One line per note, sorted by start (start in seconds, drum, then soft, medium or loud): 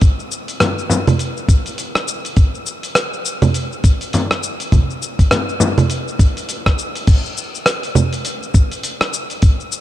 0.01 kick loud
0.01 open hi-hat medium
0.01 shaker soft
0.20 shaker soft
0.32 shaker medium
0.48 open hi-hat soft
0.48 shaker soft
0.60 cross-stick medium
0.60 open hi-hat medium
0.60 frame drum medium
0.60 shaker soft
0.79 shaker soft
0.90 frame drum medium
0.90 shaker medium
1.07 open hi-hat soft
1.07 low conga medium
1.07 shaker soft
1.19 open hi-hat medium
1.19 shaker soft
1.37 shaker soft
1.49 kick medium
1.49 open hi-hat soft
1.49 shaker medium
1.66 open hi-hat soft
1.66 shaker soft
1.78 open hi-hat medium
1.78 shaker soft
1.95 cross-stick medium
1.95 shaker soft
2.08 shaker medium
2.25 open hi-hat soft
2.25 shaker soft
2.37 kick loud
2.37 open hi-hat medium
2.37 shaker soft
2.55 shaker soft
2.66 shaker medium
2.83 open hi-hat soft
2.83 shaker soft
2.95 cross-stick medium
2.95 open hi-hat medium
2.95 shaker soft
3.13 shaker soft
3.25 shaker medium
3.42 open hi-hat soft
3.42 low conga medium
3.42 shaker soft
3.54 open hi-hat medium
3.54 shaker soft
3.72 shaker soft
3.84 kick medium
3.84 open hi-hat soft
3.84 shaker medium
4.01 open hi-hat soft
4.01 shaker soft
4.13 open hi-hat medium
4.13 frame drum medium
4.13 shaker soft
4.31 cross-stick medium
4.31 shaker soft
4.43 shaker medium
4.60 open hi-hat soft
4.60 shaker soft
4.72 kick loud
4.72 open hi-hat medium
4.72 low conga medium
4.72 shaker soft
4.90 shaker soft
5.02 shaker medium
5.19 kick medium
5.19 open hi-hat soft
5.19 shaker soft
5.31 cross-stick medium
5.31 open hi-hat medium
5.31 frame drum medium
5.31 shaker soft
5.49 shaker soft
5.60 frame drum medium
5.60 shaker medium
5.78 open hi-hat soft
5.78 low conga medium
5.78 shaker soft
5.90 open hi-hat medium
5.90 shaker soft
6.08 shaker soft
6.19 kick medium
6.19 open hi-hat medium
6.19 shaker medium
6.37 open hi-hat soft
6.37 shaker soft
6.49 open hi-hat medium
6.49 shaker soft
6.66 kick medium
6.66 cross-stick medium
6.66 shaker soft
6.79 shaker medium
6.96 open hi-hat soft
6.96 shaker soft
7.07 kick loud
7.07 open hi-hat medium
7.07 crash loud
7.07 shaker soft
7.26 shaker soft
7.37 shaker medium
7.55 shaker soft
7.66 cross-stick medium
7.66 open hi-hat medium
7.66 shaker soft
7.83 open hi-hat soft
7.83 shaker soft
7.95 low conga medium
7.95 shaker medium
8.13 open hi-hat soft
8.13 shaker soft
8.25 open hi-hat medium
8.25 shaker soft
8.43 shaker soft
8.54 kick medium
8.54 shaker medium
8.72 open hi-hat soft
8.72 shaker soft
8.83 open hi-hat medium
8.83 shaker soft
9.01 cross-stick medium
9.01 open hi-hat soft
9.01 shaker soft
9.13 shaker medium
9.30 open hi-hat soft
9.30 shaker soft
9.42 kick loud
9.42 open hi-hat medium
9.42 shaker soft
9.60 shaker soft
9.72 shaker medium